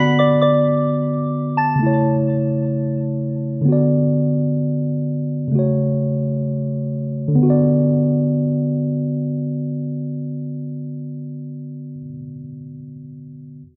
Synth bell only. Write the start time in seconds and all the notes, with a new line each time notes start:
Already playing: B5 B6
0.19 D5 D6
0.41 D5 D6
1.57 A5 A6